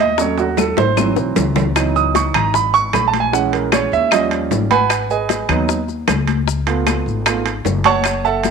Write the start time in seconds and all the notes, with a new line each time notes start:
Already playing: D#2
0.00 D#5
0.18 F#3 A3 C#4 C#5, high bongo, high conga, high timbale, maracas
0.38 F#4, high bongo, high conga, high timbale, maracas
0.57 A4, high bongo, high conga, low timbale, claves, maracas
0.77 G#1 C5, high bongo, high conga, low timbale, maracas
0.97 E3 F#3 C4, high bongo, high conga, low timbale, claves, maracas
1.16 B1, low bongo, maracas
1.36 C#2, low bongo, low conga, low timbale, maracas
1.56 low bongo, low conga, low timbale, maracas
1.76 E3 F#3 B3 D#4, high bongo, high timbale, claves, maracas
1.96 D#6, high bongo, high conga, maracas
2.15 C#6, high bongo, high conga, high timbale, low timbale, maracas
2.34 G#1 A#5, high conga, low conga, high timbale, claves, maracas
2.54 B5, high bongo, high conga, low conga, maracas
2.74 C#6, high bongo, high conga, maracas
2.93 A#1 B5, high bongo, low bongo, high conga, high timbale, low timbale, claves, maracas
3.08 A5
3.14 high bongo, high conga, high timbale, maracas
3.20 G#5
3.32 E3 G#3 C#4 F#5, high bongo, high conga, maracas
3.53 A#4, high bongo, high conga, high timbale, maracas
3.72 C#5, high bongo, high conga, high timbale, low timbale, claves, maracas
3.92 D#2 E5, high conga, maracas
4.11 F3 G3 C#4 D#5, high bongo, high conga, high timbale, claves, maracas
4.31 high bongo, high conga, high timbale, maracas
4.51 G#1, high bongo, low bongo, high conga, low timbale, maracas
4.71 B4 F#5 G#5 B5, high bongo, high conga, high timbale, maracas
4.90 high bongo, high conga, high timbale, claves, maracas
5.10 G#4 B4 D#5 G#5, high bongo, high conga, maracas
5.29 high bongo, high conga, high timbale, low timbale, maracas
5.49 D#2 F#3 B3 D#4, high conga, low conga, high timbale, claves, maracas
5.69 high bongo, maracas
5.88 high bongo, high conga, maracas
6.08 C#2, high bongo, low bongo, high conga, high timbale, low timbale, claves, maracas
6.28 high bongo, high conga, high timbale, maracas
6.48 high bongo, high conga, maracas
6.67 A3 B3 F4, high bongo, high conga, high timbale, maracas
6.87 high bongo, high conga, high timbale, low timbale, claves, maracas
7.06 G#1, high conga, maracas
7.26 A3 B3 F4, high bongo, high conga, high timbale, claves, maracas
7.46 high bongo, high conga, high timbale, maracas
7.65 F#1, high bongo, low bongo, high conga, low timbale, maracas
7.84 C#5 F#5 A5 C#6, high bongo, high conga, high timbale, maracas
8.04 high bongo, high conga, high timbale, claves, maracas
8.25 A4 E5 F#5 A5, high bongo, high conga, maracas
8.43 high bongo, high conga, high timbale, low timbale, maracas